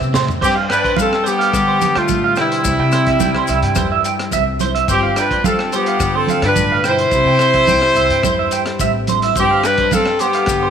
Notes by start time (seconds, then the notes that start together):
Already playing: B2 G3 C4 E4 G4
0.01 C3, maracas
0.13 A2 C5, snare, low conga, maracas
0.28 floor tom, maracas
0.41 G2 C4 D4 G4 C5, kick, crash, muted conga, maracas
0.56 F5
0.69 D4 B4 G5, cross-stick, closed hi-hat, maracas
0.84 C5, kick, closed hi-hat
0.96 G3 C4 D4 A4 F5, kick, closed hi-hat, muted conga, high conga, maracas
1.13 cross-stick
1.24 B3 D4 G4 C5, closed hi-hat, maracas
1.39 F5, closed hi-hat
1.53 D3 G3, kick, cross-stick, closed hi-hat, muted conga, maracas
1.68 C5
1.81 closed hi-hat, muted conga, high conga, maracas
1.95 G3 A3 F4 G5, cross-stick, closed hi-hat
2.08 A2, kick, closed hi-hat, high conga, maracas
2.24 F5
2.36 B2 G3 E4 G5, cross-stick, closed hi-hat, maracas
2.52 C5, closed hi-hat
2.64 C2 C3 C4, kick, closed hi-hat, muted conga, maracas
2.79 C3 G5
2.92 C5, cross-stick, closed hi-hat, maracas
3.06 E5, kick, closed hi-hat
3.20 C2 G3 C4 G5, kick, closed hi-hat, muted conga, high conga, maracas
3.35 C5, cross-stick
3.47 C2 E5, muted steel-string acoustic guitar stroke, closed hi-hat, maracas
3.63 G2 G5, closed hi-hat
3.75 E2 G2 C5, kick, cross-stick, closed hi-hat, muted conga, high conga, maracas
3.92 E5
4.04 G5, closed hi-hat, muted conga, maracas
4.20 cross-stick, closed hi-hat
4.31 C2 G3 E5, kick, closed hi-hat, low conga, maracas
4.36 C4
4.60 E4 C5, closed hi-hat, high conga, maracas
4.75 E5, closed hi-hat
4.88 G1 G2 C4 F4 G4 C5, kick, closed hi-hat, muted conga, maracas
5.03 F5
5.16 D4 B4 G5, cross-stick, closed hi-hat, maracas
5.31 C5, kick, closed hi-hat
5.44 G3 C4 F4 A4 F5, kick, closed hi-hat, muted conga, high conga, maracas
5.59 cross-stick
5.72 B3 F4 G4 C5, closed hi-hat, maracas
5.86 F5, closed hi-hat
6.00 G2 D3, kick, cross-stick, closed hi-hat, muted conga, maracas
6.14 C4 A4 C5
6.27 F5, closed hi-hat, muted conga, high conga, maracas
6.42 G2 D4 B4 G5, cross-stick, closed hi-hat
6.55 A2, kick, closed hi-hat, high conga, maracas
6.72 F5
6.84 B2 E4 G5, cross-stick, closed hi-hat, maracas
6.88 C5
6.98 C5, closed hi-hat
7.11 C2 C3 G4, kick, closed hi-hat, muted conga, maracas
7.25 C3 G5
7.39 C5, cross-stick, closed hi-hat, maracas
7.54 E5, kick, closed hi-hat
7.67 C2 G3 E4 G5, kick, closed hi-hat, muted conga, high conga, maracas
7.82 C5, cross-stick
7.95 C2 G4 E5, closed hi-hat, maracas
8.10 G2 G5, closed hi-hat
8.23 E2 G2 C5, kick, cross-stick, closed hi-hat, muted conga, high conga, maracas
8.39 E5
8.51 G5, closed hi-hat, maracas
8.66 cross-stick, closed hi-hat
8.79 A1 G3 C4 E5, kick, closed hi-hat, low conga, maracas
9.07 C5, closed hi-hat, high conga, maracas
9.12 D4
9.22 E4 E5, closed hi-hat
9.35 G1 G2 C4 G4 C5, kick, closed hi-hat, muted conga, maracas
9.40 D4
9.51 F5
9.64 D4 B4 G5, cross-stick, closed hi-hat, maracas
9.78 C5, kick, closed hi-hat
9.91 G3 C4 A4 F5, kick, closed hi-hat, muted conga, high conga, maracas
9.95 D4
10.06 cross-stick
10.19 B3 D4 G4 C5, closed hi-hat, maracas
10.33 F5, closed hi-hat
10.46 G2 D3, kick, cross-stick, closed hi-hat, muted conga, maracas
10.63 C5